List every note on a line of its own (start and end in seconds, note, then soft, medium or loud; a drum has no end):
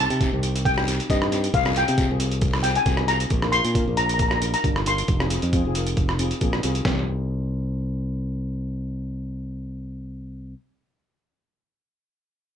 0.00 0.12 C4 medium
0.00 0.12 D#4 medium
0.00 0.12 G4 medium
0.00 0.66 A5 loud
0.00 short guiro medium
0.10 0.29 C3 medium
0.10 closed hi-hat medium
0.20 0.27 C4 medium
0.20 0.28 D#4 medium
0.20 0.28 G4 medium
0.20 kick medium
0.20 closed hi-hat medium
0.20 short guiro medium
0.33 0.99 C2 medium
0.33 0.39 C4 medium
0.33 0.39 D#4 medium
0.33 0.39 G4 medium
0.43 0.70 C4 medium
0.43 0.70 D#4 medium
0.43 0.71 G4 medium
0.43 closed hi-hat medium
0.56 closed hi-hat medium
0.65 1.06 G5 medium
0.65 kick medium
0.65 closed hi-hat medium
0.65 long guiro medium
0.78 cross-stick medium
0.87 1.01 C4 medium
0.87 1.01 D#4 medium
0.87 1.01 G4 medium
0.87 closed hi-hat medium
1.00 closed hi-hat medium
1.09 1.48 G2 medium
1.09 1.23 C4 medium
1.09 1.23 D#4 medium
1.09 1.24 G4 medium
1.09 1.55 D#5 medium
1.09 kick medium
1.09 closed hi-hat medium
1.09 short guiro medium
1.22 cross-stick medium
1.31 1.51 C4 medium
1.31 1.52 D#4 medium
1.31 1.52 G4 medium
1.31 closed hi-hat medium
1.31 short guiro medium
1.44 closed hi-hat medium
1.54 1.83 C2 medium
1.54 1.77 F5 medium
1.54 kick medium
1.54 closed hi-hat soft
1.54 long guiro medium
1.64 1.71 C4 medium
1.64 1.71 F4 medium
1.64 1.72 G#4 medium
1.64 cross-stick medium
1.75 1.89 C4 medium
1.75 1.89 F4 medium
1.75 1.89 G#4 medium
1.75 2.18 G5 medium
1.75 closed hi-hat medium
1.75 short guiro medium
1.88 2.07 C3 medium
1.88 closed hi-hat medium
1.98 2.05 C4 medium
1.98 2.05 F4 medium
1.98 2.05 G#4 medium
1.98 kick medium
1.98 closed hi-hat medium
1.98 short guiro medium
2.09 2.77 C2 medium
2.09 2.15 C4 medium
2.09 2.16 F4 medium
2.09 2.16 G#4 medium
2.19 2.46 C4 medium
2.19 2.47 F4 medium
2.19 2.47 G#4 medium
2.19 closed hi-hat medium
2.31 closed hi-hat soft
2.41 kick loud
2.41 closed hi-hat medium
2.41 long guiro medium
2.54 cross-stick medium
2.63 2.77 C4 medium
2.63 2.78 F4 medium
2.63 2.78 G#4 medium
2.63 2.76 G5 medium
2.63 closed hi-hat medium
2.75 3.09 G#5 medium
2.75 closed hi-hat medium
2.86 3.24 C2 medium
2.86 3.00 C4 medium
2.86 3.00 F4 medium
2.86 3.01 G#4 medium
2.86 kick medium
2.86 closed hi-hat soft
2.86 short guiro medium
2.97 cross-stick medium
3.08 3.28 C4 medium
3.08 3.29 F4 medium
3.08 3.29 G#4 medium
3.08 3.54 A#5 medium
3.08 closed hi-hat medium
3.08 short guiro medium
3.20 closed hi-hat medium
3.30 3.60 A#1 medium
3.30 kick medium
3.30 closed hi-hat soft
3.42 3.48 D4 medium
3.42 3.49 F4 medium
3.42 3.49 A#4 medium
3.42 cross-stick medium
3.52 3.67 D4 medium
3.52 3.67 F4 medium
3.52 3.67 A#4 medium
3.52 3.94 C6 loud
3.52 closed hi-hat medium
3.64 3.84 A#2 medium
3.64 closed hi-hat medium
3.75 3.82 D4 medium
3.75 3.82 F4 medium
3.75 3.83 A#4 medium
3.75 kick medium
3.75 closed hi-hat medium
3.87 4.54 A#1 medium
3.87 3.93 D4 medium
3.87 3.94 F4 medium
3.87 3.94 A#4 medium
3.97 4.24 D4 medium
3.97 4.24 F4 medium
3.97 4.25 A#4 medium
3.97 4.05 A#5 medium
3.97 closed hi-hat medium
4.06 4.13 A#5 medium
4.06 closed hi-hat medium
4.14 4.21 A#5 medium
4.19 4.27 A#5 medium
4.19 kick medium
4.19 closed hi-hat medium
4.28 4.35 A#5 medium
4.28 cross-stick medium
4.36 4.43 A#5 medium
4.41 4.55 D4 medium
4.41 4.56 F4 medium
4.41 4.56 A#4 medium
4.41 closed hi-hat medium
4.54 4.87 A#5 medium
4.54 closed hi-hat medium
4.64 5.02 G1 medium
4.64 4.78 D4 medium
4.64 4.78 F4 medium
4.64 4.78 A#4 medium
4.64 kick medium
4.64 closed hi-hat medium
4.76 cross-stick medium
4.86 5.06 D4 medium
4.86 5.07 F4 medium
4.86 5.07 A#4 medium
4.86 6.38 C6 medium
4.86 closed hi-hat medium
4.98 closed hi-hat medium
5.08 5.38 F1 medium
5.08 kick medium
5.08 closed hi-hat medium
5.20 5.26 C4 medium
5.20 5.27 F4 medium
5.20 5.27 G#4 medium
5.20 cross-stick medium
5.30 5.44 C4 medium
5.30 5.45 F4 medium
5.30 5.45 G#4 medium
5.30 closed hi-hat medium
5.42 5.62 F2 medium
5.42 closed hi-hat soft
5.53 5.60 C4 medium
5.53 5.60 F4 medium
5.53 5.60 G#4 medium
5.53 kick medium
5.53 closed hi-hat medium
5.65 6.31 F1 medium
5.65 5.71 C4 medium
5.65 5.71 F4 medium
5.65 5.72 G#4 medium
5.75 6.02 C4 medium
5.75 6.03 F4 medium
5.75 6.03 A#4 medium
5.75 closed hi-hat medium
5.87 closed hi-hat soft
5.97 kick medium
5.97 closed hi-hat soft
6.09 cross-stick medium
6.19 6.33 C4 medium
6.19 6.33 F4 medium
6.19 6.34 G#4 medium
6.19 closed hi-hat medium
6.31 closed hi-hat medium
6.41 6.61 A#1 medium
6.41 6.55 C4 medium
6.41 6.56 F4 medium
6.41 6.56 G#4 medium
6.41 kick medium
6.41 closed hi-hat soft
6.53 cross-stick medium
6.63 6.84 C2 medium
6.63 6.83 C4 medium
6.63 6.84 F4 medium
6.63 6.84 G#4 medium
6.63 closed hi-hat medium
6.75 closed hi-hat soft
6.84 10.53 C2 medium
6.84 10.52 C4 medium
6.84 10.54 D#4 medium
6.84 kick medium
6.84 snare medium
6.89 10.57 G4 medium